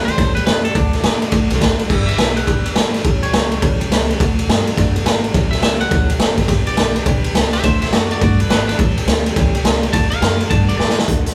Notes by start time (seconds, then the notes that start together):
0.05 E2 G3 C#4 G4 A4 C5, ride
0.16 F#2 A2 E3 G3 C#4 G4 A4, kick, snare, ride
0.34 A2 G3 C#4 G4 A4 B4, ride
0.44 F#2 G3 C#4 G4 A4 B4, snare, ride
0.63 G3 C#4 G4 A4, ride
0.74 D2 D3 A3 D4 F#4 A4, kick, ride
0.92 D4 F#4 A4, snare, ride
1.03 A2 A3 D4 F#4 A4, snare, ride
1.21 D4 F#4 A4, ride
1.31 F#2 D3 A3 D4 F#4 A4, kick, snare, ride
1.49 C2 D4 F#4 A4, snare, ride
1.60 D2 A3 D4 F#4 A4, kick, snare, ride
1.79 G2 D4 F#4 A4, ride
1.90 G1 G3 D4 G4 B4, kick, crash
2.07 D4 B4 E5, ride
2.17 B1 G3 D4 G4 B4 E5, snare, ride
2.35 D4 G4 B4 F#5, ride
2.46 B1 G3 D4 G4 B4, kick, ride
2.63 D4 G4 B4, ride
2.74 G1 G3 D4 G4 B4 D5, snare, ride
2.92 D4 G4 B4, snare, ride
3.03 A1 A2 E3 G3 C#4 G4 A4, kick, ride
3.21 G3 C#4 G4 A4 C#5, ride
3.32 C#2 G3 C#4 A4, snare, ride
3.50 G3 C#4 G4 A4, ride
3.60 D2 A2 E3 G3 C#4 G4 A4, kick, ride
3.79 G3 C#4 G4 A4, ride
3.90 C#2 G3 C#4 G4 A4, snare, ride
4.07 G3 C#4 G4 A4, ride
4.19 D2 D3 A3 D4 F#4 A4, kick, snare, ride
4.36 D4 F#4 A4, ride
4.47 G2 A3 D4 F#4 A4, snare, ride
4.66 D4 F#4 A4, ride
4.76 F#2 D3 A3 D4 F#4 A4, kick, snare, ride
4.94 D4 F#4 A4, ride
5.04 G#1 A3 D4 F#4 A4, snare, ride
5.22 D4 F#4 A4, ride
5.33 A1 A2 E3 G3 C#4 G4 A4, kick, snare, ride
5.51 G3 C#4 G4 A4 E5, snare, ride
5.61 C#2 G3 C#4 G4 A4 E5, snare, ride
5.79 G3 C#4 G4 A4 F#5, ride
5.90 D2 A2 E3 G3 C#4 G4 A4, kick, snare, ride
6.07 G3 C#4 G4 A4, ride
6.19 F#1 G3 C#4 G4 A4 C5, snare, ride
6.37 G3 C#4 G4 A4, kick, snare, ride
6.47 G1 G3 D4 G4 B4, kick, snare, ride
6.66 D4 G4 B4 D5, ride
6.76 B1 G3 D4 B4, snare, ride
6.95 D4 G4 B4, ride
7.05 B1 G3 D4 G4 B4, kick, ride
7.24 D4 G4 B4, ride
7.34 C#2 G3 D4 G4 B4, snare, ride
7.53 D4 G4 B4 E5, snare, ride
7.63 D2 D3 A3 D4 F#4 A4 C5 E5, kick, snare, ride
7.81 D4 F#4 A4 C5 E5, snare, ride
7.91 F#2 A3 D4 F#4 D5, snare, ride
8.09 D4 F#4 A4 D5, ride
8.21 G2 D3 A3 D4 F#4 A4 D5, kick, ride
8.39 D4 F#4 A4 B4, ride
8.48 G#1 A3 D4 F#4 B4, snare, ride
8.68 D4 F#4 A4 B4, snare, ride
8.77 A1 A2 E3 G3 C#4 G4 A4, kick, ride
8.96 G3 C#4 G4 A4, ride
9.06 D2 G3 C#4 G4 A4, snare, ride
9.25 G3 C#4 G4 A4, ride
9.36 C#2 A2 E3 G3 C#4 G4 A4, kick, snare, ride
9.54 G3 C#4 G4 A4, ride
9.64 C#2 G3 C#4 G4 A4, snare, ride
9.83 G3 C#4 G4 A4, ride
9.93 D2 D3 A3 D4 F#4 A4 A5, kick, snare, ride
10.10 F#4 A4 F5, ride
10.15 D4
10.21 F#2 A3 D4 F#4, snare, ride
10.26 A4
10.40 D4 F#4 A4, ride
10.50 G2 D3 A3 D4 F#4 A4 A5, kick, ride
10.69 F#4 A4 D5, ride
10.73 D4
10.77 A2 A3 D4 D5, snare
10.82 F#4
10.89 snare
10.98 D4 F#4 A4, snare
11.08 D2 D3 A3 D4 F#4 A4, kick, closed hi-hat
11.25 D4 F#4 A4, snare, closed hi-hat